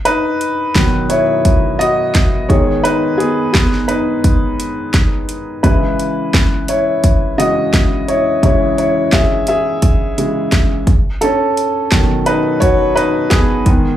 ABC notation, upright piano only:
X:1
M:4/4
L:1/8
Q:1/4=86
K:C#m
V:1 name="Upright piano"
[DB]3 [Ec]2 [Fd]2 [Gc] | [DB] [B,G] [B,G] [DB]4 z | [EB]3 [Ec]2 [Fd]2 [Ec] | [Ec] [Ec] [Ge] [Ge]4 z |
[CA]3 [DB] [Fc] [DB] [B,G]2 |]
V:2 name="Upright piano" clef=bass
z2 [B,,D,F,] z4 [G,,D,B,]- | [G,,D,B,]6- [G,,D,B,] z | [C,E,G,]3 z2 [C,E,G,] z2 | [C,E,G,]3 z2 [C,E,G,] z2 |
z2 [B,,D,F,] z4 [G,,D,B,] |]